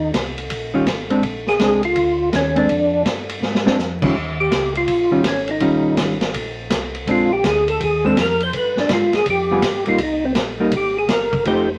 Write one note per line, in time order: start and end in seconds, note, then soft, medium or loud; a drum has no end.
0.00 0.12 D#2 medium
0.00 0.11 D#4 medium
0.13 0.49 C2 medium
0.13 kick soft
0.13 snare medium
0.13 hi-hat pedal soft
0.13 ride medium
0.38 ride soft
0.50 0.85 A#1 medium
0.50 kick soft
0.50 ride medium
0.74 0.85 D#3 medium
0.74 0.85 G3 medium
0.74 0.85 C#4 medium
0.74 0.86 F4 medium
0.86 1.22 G#1 medium
0.86 kick soft
0.86 snare medium
0.86 hi-hat pedal medium
0.86 ride medium
1.10 1.22 G#3 medium
1.10 1.22 C4 medium
1.10 1.22 D4 medium
1.10 ride soft
1.23 1.58 A#1 medium
1.23 kick soft
1.23 ride medium
1.47 1.82 G#4 loud
1.47 snare soft
1.59 1.95 C2 medium
1.59 1.81 G#3 medium
1.59 1.81 C4 medium
1.59 1.81 D4 medium
1.59 kick soft
1.59 snare medium
1.59 hi-hat pedal medium
1.59 ride medium
1.83 2.30 F4 medium
1.83 ride medium
1.95 2.31 D2 medium
1.95 kick soft
1.95 ride medium
2.32 2.68 D#2 medium
2.32 2.57 C#4 medium
2.32 kick soft
2.32 snare medium
2.32 hi-hat pedal soft
2.32 ride medium
2.56 2.67 G#3 medium
2.56 2.67 C4 medium
2.56 2.68 D4 medium
2.56 3.03 D4 medium
2.56 ride soft
2.68 3.04 F2 medium
2.68 kick soft
2.68 ride medium
3.05 3.41 G2 medium
3.05 kick soft
3.05 snare medium
3.05 hi-hat pedal medium
3.05 ride medium
3.29 ride medium
3.41 3.77 G#2 medium
3.41 snare soft
3.55 snare medium
3.65 3.77 G#3 medium
3.65 3.77 C4 medium
3.65 3.77 D4 medium
3.65 snare medium
3.77 4.13 F2 medium
3.77 snare medium
3.77 hi-hat pedal medium
4.02 4.13 D#3 medium
4.02 4.14 G3 medium
4.02 4.14 C#4 medium
4.02 4.14 F4 medium
4.02 kick medium
4.02 crash medium
4.15 4.50 D#2 medium
4.15 kick soft
4.40 4.73 G4 medium
4.51 4.87 C#2 medium
4.51 kick soft
4.51 snare medium
4.51 hi-hat pedal medium
4.51 ride medium
4.75 5.22 F4 medium
4.75 ride soft
4.88 5.10 A#1 medium
4.88 kick soft
4.88 ride medium
5.11 5.17 A#1 soft
5.11 5.23 D#3 medium
5.11 5.23 G3 medium
5.11 5.23 C#4 medium
5.11 5.23 F4 medium
5.24 5.60 G#1 medium
5.24 kick soft
5.24 snare medium
5.24 hi-hat pedal medium
5.24 ride medium
5.28 5.49 C#4 medium
5.47 5.95 D#4 medium
5.47 ride soft
5.60 5.96 G1 medium
5.60 6.16 D#3 medium
5.60 6.16 G3 medium
5.60 6.17 C#4 medium
5.60 6.17 F4 medium
5.60 kick soft
5.60 ride medium
5.97 6.33 G#1 medium
5.97 kick soft
5.97 snare medium
5.97 hi-hat pedal medium
5.97 ride medium
6.21 snare medium
6.21 ride soft
6.34 6.69 A#1 medium
6.34 kick soft
6.34 ride medium
6.70 7.06 C2 medium
6.70 kick soft
6.70 snare medium
6.70 hi-hat pedal medium
6.70 ride medium
6.94 ride soft
7.07 7.42 A#1 medium
7.07 7.28 G#3 medium
7.07 7.29 C4 medium
7.07 7.29 D4 medium
7.07 kick soft
7.07 ride medium
7.11 7.32 F4 medium
7.33 7.44 G4 medium
7.44 7.79 D2 loud
7.44 7.68 G#4 medium
7.44 kick soft
7.44 snare medium
7.44 hi-hat pedal medium
7.44 ride medium
7.68 7.81 A4 loud
7.68 ride soft
7.80 8.15 D#2 medium
7.80 8.05 G#4 medium
7.80 kick soft
7.80 ride medium
8.05 8.16 G#3 medium
8.05 8.16 C4 medium
8.05 8.16 D4 medium
8.05 8.17 A4 medium
8.17 8.52 F2 loud
8.17 kick soft
8.17 snare medium
8.17 hi-hat pedal medium
8.17 ride medium
8.21 8.42 A#4 medium
8.40 8.54 C5 loud
8.40 ride soft
8.53 8.75 G2 medium
8.53 kick soft
8.53 ride medium
8.57 8.78 B4 medium
8.77 8.83 G2 soft
8.77 8.91 D4 medium
8.77 snare soft
8.89 9.11 G#2 loud
8.89 kick soft
8.89 snare medium
8.89 hi-hat pedal medium
8.89 ride medium
8.93 9.15 F4 medium
9.13 9.19 G#2 soft
9.13 9.27 G#4 loud
9.13 snare soft
9.13 ride soft
9.26 9.61 F2 medium
9.26 kick soft
9.26 ride medium
9.30 9.85 G4 medium
9.51 9.62 G3 medium
9.51 9.62 B3 medium
9.51 9.62 F4 medium
9.51 9.63 G#4 medium
9.62 9.98 G2 medium
9.62 kick soft
9.62 snare medium
9.62 hi-hat pedal medium
9.62 ride medium
9.86 9.98 G3 medium
9.86 9.99 A#3 medium
9.86 9.99 D#4 medium
9.86 10.00 F4 medium
9.86 ride soft
9.98 10.34 C2 medium
9.98 kick soft
9.98 ride medium
10.03 10.24 D#4 medium
10.25 10.32 C4 medium
10.35 10.71 A#1 medium
10.35 kick soft
10.35 snare medium
10.35 hi-hat pedal medium
10.35 ride medium
10.60 10.71 G3 medium
10.60 10.72 A#3 medium
10.60 10.72 D#4 medium
10.71 11.07 G#1 medium
10.71 kick soft
10.71 ride medium
10.76 10.97 G4 medium
10.99 11.10 G#4 medium
11.08 11.44 G1 medium
11.08 11.44 A#4 medium
11.08 kick soft
11.08 snare medium
11.08 hi-hat pedal medium
11.08 ride medium
11.33 kick soft
11.33 ride soft
11.45 11.78 F1 medium
11.45 11.67 F3 medium
11.45 11.68 A3 medium
11.45 11.68 D#4 medium
11.45 11.68 G4 medium
11.45 11.70 C5 medium
11.45 kick soft
11.45 ride medium